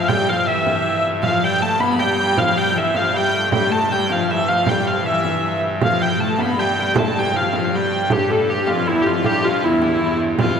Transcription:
0.00 3.51 G2 medium
0.00 0.12 F3 medium
0.08 0.30 G3 medium
0.08 0.31 G3 medium
0.08 0.29 G5 medium
0.08 frame drum medium
0.28 0.47 F3 medium
0.28 0.48 F3 medium
0.28 0.47 F5 medium
0.28 frame drum soft
0.47 1.04 E3 medium
0.47 1.00 E3 medium
0.47 1.04 E5 medium
0.67 frame drum medium
0.85 frame drum soft
1.05 frame drum soft
1.23 1.43 F3 medium
1.23 1.44 F3 medium
1.23 1.44 F5 medium
1.23 frame drum medium
1.42 1.62 G3 medium
1.42 1.63 G3 medium
1.42 1.62 G5 medium
1.42 frame drum soft
1.61 1.80 A3 medium
1.61 1.80 A5 medium
1.79 2.01 B3 medium
1.79 2.02 B3 medium
1.79 1.99 B5 medium
1.79 frame drum medium
1.99 2.17 G3 medium
1.99 2.38 G3 medium
1.99 2.20 G5 medium
1.99 frame drum soft
2.18 2.40 G3 medium
2.18 2.38 G5 medium
2.18 frame drum soft
2.36 2.58 F3 medium
2.36 2.57 F3 medium
2.36 2.58 F5 medium
2.36 frame drum medium
2.56 2.77 G3 medium
2.56 2.70 G3 medium
2.56 2.78 G5 medium
2.56 frame drum soft
2.71 2.77 F3 medium
2.75 2.96 E3 medium
2.75 2.94 E3 medium
2.75 2.97 E5 medium
2.75 frame drum soft
2.94 3.03 F3 medium
2.94 3.14 F3 medium
2.94 3.17 F5 medium
2.94 frame drum medium
3.13 3.35 G3 medium
3.13 3.49 G3 medium
3.13 3.52 G5 medium
3.33 3.54 A3 medium
3.33 frame drum soft
3.52 8.10 G2 medium
3.52 3.73 G3 medium
3.52 3.72 G3 medium
3.52 3.72 G5 medium
3.52 frame drum medium
3.70 3.90 A3 medium
3.70 3.93 A3 medium
3.70 3.92 A5 medium
3.70 frame drum soft
3.91 4.08 G3 medium
3.91 4.09 G3 medium
3.91 4.12 G5 medium
4.10 4.30 F3 medium
4.10 4.27 F3 medium
4.10 4.31 F5 medium
4.10 frame drum medium
4.29 4.51 E3 medium
4.29 4.35 E3 medium
4.29 4.49 E5 medium
4.29 frame drum soft
4.34 4.40 F3 medium
4.39 4.47 E3 medium
4.48 4.66 F3 medium
4.48 4.70 F3 medium
4.48 4.69 F5 medium
4.48 frame drum soft
4.65 5.04 G3 medium
4.65 4.88 G3 medium
4.65 frame drum medium
4.69 4.87 G5 medium
4.86 5.06 F3 medium
4.86 5.06 F5 medium
4.86 frame drum soft
5.05 5.58 E3 medium
5.05 5.62 E3 medium
5.05 5.59 E5 medium
5.25 frame drum medium
5.44 frame drum soft
5.63 frame drum soft
5.74 5.82 G3 medium
5.80 6.18 F3 medium
5.80 5.99 F3 medium
5.80 6.02 F5 medium
5.80 frame drum medium
6.02 6.20 G5 medium
6.18 6.40 A3 medium
6.18 6.41 A3 medium
6.18 6.41 A5 medium
6.38 6.59 B3 medium
6.38 6.57 B3 medium
6.38 6.59 B5 medium
6.38 frame drum medium
6.57 6.76 G3 medium
6.57 6.75 G3 medium
6.57 6.80 G5 medium
6.57 frame drum soft
6.76 6.97 G3 medium
6.76 6.96 G3 medium
6.76 6.98 G5 medium
6.76 frame drum soft
6.95 7.14 A3 medium
6.95 7.16 A3 medium
6.95 7.19 A5 medium
6.95 frame drum loud
7.14 7.35 G3 medium
7.14 frame drum soft
7.19 7.36 G5 medium
7.33 7.53 F3 medium
7.33 7.51 F3 medium
7.33 7.55 F5 medium
7.33 frame drum soft
7.52 7.73 F3 medium
7.52 7.71 F3 medium
7.52 7.75 F5 medium
7.52 frame drum medium
7.72 8.09 G3 medium
7.72 8.08 G3 medium
7.72 8.12 G5 medium
7.72 frame drum soft
8.09 8.45 G2 medium
8.09 8.32 G2 medium
8.09 10.60 G2 medium
8.09 8.30 G4 medium
8.09 frame drum medium
8.29 8.49 A2 medium
8.29 8.50 A4 loud
8.29 frame drum soft
8.50 8.68 G2 medium
8.50 8.70 G2 medium
8.50 8.68 G4 medium
8.67 8.88 F2 medium
8.67 8.89 F2 medium
8.67 8.87 F4 medium
8.67 frame drum medium
8.86 9.08 E2 medium
8.86 9.05 E2 medium
8.86 9.02 E4 medium
8.86 frame drum soft
9.02 9.24 F2 medium
9.02 9.26 F2 medium
9.02 9.26 F4 medium
9.02 9.06 G4 medium
9.02 frame drum soft
9.24 9.60 G2 medium
9.24 9.44 G2 medium
9.24 9.44 G4 loud
9.24 frame drum medium
9.43 9.63 F2 medium
9.43 9.64 F4 medium
9.43 frame drum soft
9.61 10.19 E2 medium
9.61 9.99 E2 medium
9.61 10.21 E4 medium
9.82 frame drum medium
10.01 10.19 E2 medium
10.01 frame drum soft
10.20 frame drum soft
10.39 10.60 F2 medium
10.39 10.49 F2 medium
10.39 10.60 F4 loud
10.39 frame drum medium
10.47 10.55 G2 medium
10.53 10.60 F2 medium

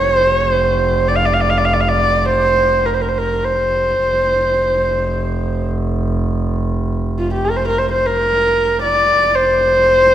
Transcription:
0.00 4.03 F1 medium
0.00 0.15 C#5 medium
0.15 0.32 C5 medium
0.32 0.47 C#5 medium
0.47 1.10 C5 medium
1.08 1.17 D5 medium
1.16 1.27 F5 medium
1.26 1.35 D5 medium
1.34 1.43 F5 medium
1.41 1.51 D5 medium
1.50 1.59 F5 medium
1.58 1.67 D5 medium
1.65 1.75 F5 medium
1.73 1.82 D5 medium
1.81 1.90 F5 medium
1.89 2.27 D5 medium
2.25 2.88 C5 medium
2.86 2.96 A#4 medium
2.94 3.03 C5 medium
3.02 3.11 A#4 medium
3.09 3.19 C5 medium
3.18 3.46 A#4 medium
3.44 5.67 C5 medium
4.03 9.20 F1 medium
7.18 7.32 F4 medium
7.33 7.47 G4 medium
7.45 7.58 A#4 medium
7.57 7.67 C5 medium
7.67 7.80 A#4 medium
7.78 7.91 C5 medium
7.92 8.08 C5 medium
8.07 8.82 A#4 medium
8.83 9.37 D5 medium
9.20 10.15 F1 medium
9.35 10.15 C5 loud

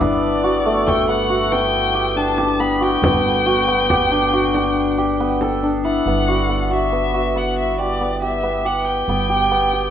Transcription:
0.00 2.99 G1 medium
0.00 1.08 B3 medium
0.00 2.16 D4 medium
0.00 3.28 E4 medium
0.00 0.50 G4 medium
0.00 0.86 A4 medium
0.00 0.89 D5 medium
0.00 frame drum soft
0.23 frame drum soft
0.44 1.29 F#4 medium
0.65 5.09 A3 medium
0.87 3.79 A4 medium
0.87 1.09 G5 medium
0.87 frame drum medium
1.08 1.51 B3 medium
1.08 1.54 F#5 medium
1.30 2.00 F#4 medium
1.30 frame drum soft
1.51 2.59 B3 medium
1.51 2.18 G5 loud
1.51 frame drum soft
1.74 frame drum soft
1.94 2.37 G4 medium
2.16 4.11 D4 medium
2.16 2.62 A5 medium
2.38 2.86 G4 medium
2.38 frame drum soft
2.60 3.03 B3 medium
2.60 2.84 B5 medium
2.80 3.46 F#4 medium
2.80 5.63 G5 loud
3.02 6.01 G1 medium
3.02 3.67 B3 medium
3.02 frame drum medium
3.25 frame drum soft
3.46 3.96 F#4 medium
3.68 5.20 B3 medium
3.68 frame drum soft
3.90 4.39 G4 medium
3.90 frame drum medium
4.11 4.54 D4 medium
4.11 frame drum soft
4.33 5.04 F#4 medium
4.54 5.63 D4 medium
4.54 frame drum soft
4.76 frame drum soft
4.98 6.34 G4 medium
4.98 frame drum soft
5.19 6.07 B3 medium
5.19 frame drum soft
5.41 8.35 A4 medium
5.41 frame drum soft
5.63 9.36 D4 medium
5.85 9.33 E4 medium
5.85 6.68 F#5 medium
5.85 frame drum soft
6.06 9.05 G1 medium
6.06 6.48 B3 medium
6.28 6.70 F#4 medium
6.49 6.92 B3 medium
6.70 7.13 F#4 medium
6.70 7.39 E5 medium
6.92 7.35 B3 medium
7.14 7.85 F#4 medium
7.35 8.00 B3 medium
7.35 7.58 F#5 medium
7.59 7.78 E5 medium
7.79 8.21 G4 medium
7.79 8.20 D5 medium
8.01 8.43 B3 medium
8.22 8.65 G4 medium
8.22 8.67 E5 medium
8.43 9.08 B3 medium
8.65 9.29 G4 medium
8.65 8.86 F#5 medium
8.87 9.90 G5 medium
9.08 9.90 G1 medium
9.08 9.51 B3 medium
9.29 9.73 G4 medium
9.51 9.90 B3 medium
9.73 9.90 G4 medium

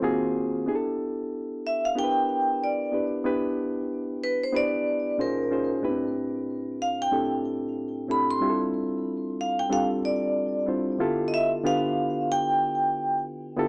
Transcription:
0.00 0.62 D#3 medium
0.00 0.62 A#3 medium
0.00 0.62 C4 medium
0.00 0.62 F4 medium
0.00 0.63 F#4 medium
0.00 0.63 G#4 loud
0.00 0.21 C5 medium
0.66 1.86 B3 medium
0.66 1.86 D4 medium
0.66 1.87 E4 medium
0.66 1.87 G4 medium
0.66 0.76 G#4 medium
0.75 1.91 A4 medium
1.67 1.85 E5 medium
1.85 1.97 F5 medium
1.95 2.85 B3 medium
1.95 2.86 D4 medium
1.95 2.86 E4 medium
1.95 2.86 G4 medium
1.95 2.05 A#4 medium
1.95 2.64 G5 loud
2.04 2.90 B4 medium
2.64 3.10 D5 medium
2.92 3.22 B3 medium
2.92 3.23 D4 medium
2.92 3.23 E4 medium
2.92 3.23 G4 medium
2.92 3.24 B4 medium
3.24 4.44 B3 medium
3.24 4.44 D4 medium
3.24 4.45 E4 medium
3.24 4.45 G4 medium
3.24 4.45 B4 medium
4.24 4.43 B4 medium
4.44 4.56 C5 medium
4.52 5.18 B3 medium
4.52 5.18 D4 medium
4.52 5.18 E4 medium
4.52 5.19 G4 medium
4.52 5.19 B4 medium
4.57 5.16 D5 loud
5.18 5.48 A#2 medium
5.18 5.49 C#4 medium
5.18 5.49 D#4 medium
5.18 5.49 F4 medium
5.18 5.49 G#4 medium
5.18 5.68 A#4 medium
5.18 5.49 C5 medium
5.50 5.81 A#2 medium
5.50 5.81 C#4 medium
5.50 5.81 D#4 medium
5.50 5.81 F4 soft
5.50 5.81 G#4 medium
5.50 5.82 C5 medium
5.82 7.02 A2 medium
5.82 5.91 B3 medium
5.82 7.02 D4 medium
5.82 7.03 E4 medium
5.82 7.03 G4 medium
5.82 7.03 B4 medium
5.89 7.06 C4 medium
6.82 7.01 F5 medium
7.02 7.31 G5 medium
7.11 8.01 A2 medium
7.11 8.02 C4 medium
7.11 8.02 D4 medium
7.11 8.02 E4 medium
7.11 8.02 G4 medium
7.11 8.02 A4 medium
8.08 8.38 A2 medium
8.08 8.39 C4 medium
8.08 8.39 D4 medium
8.08 8.39 E4 medium
8.08 8.39 G4 soft
8.08 8.40 A4 medium
8.08 8.30 B5 medium
8.31 8.60 C6 medium
8.40 9.60 G3 medium
8.40 9.61 C4 medium
8.40 9.61 D4 medium
8.40 9.61 E4 medium
8.40 9.61 F4 medium
8.40 8.50 G4 medium
8.49 9.65 A4 medium
9.41 9.60 F5 medium
9.59 9.72 G5 medium
9.69 10.60 G3 medium
9.69 10.60 C4 medium
9.69 10.60 D4 medium
9.69 10.60 F4 medium
9.69 10.60 G4 medium
9.69 10.61 A4 medium
9.69 9.87 F5 medium
10.05 10.64 D5 medium
10.66 10.96 G3 medium
10.66 10.97 C4 medium
10.66 10.97 D4 medium
10.66 10.97 E4 medium
10.66 10.97 F4 medium
10.66 10.98 C5 medium
10.99 11.59 D3 medium
10.99 11.59 B3 medium
10.99 11.59 E4 medium
10.99 11.60 F4 medium
10.99 11.60 G4 medium
10.99 11.60 A4 medium
11.28 11.33 D#5 medium
11.34 11.48 E5 medium
11.64 12.83 D3 medium
11.64 12.84 B3 medium
11.64 12.84 D4 medium
11.64 12.84 F4 medium
11.64 12.84 G4 medium
11.64 12.84 B4 medium
11.64 12.32 F5 loud
12.32 13.23 G5 loud
13.56 13.68 D3 medium
13.56 13.68 B3 medium
13.56 13.68 E4 medium
13.56 13.68 F4 medium
13.56 13.68 G4 medium
13.56 13.68 A4 loud

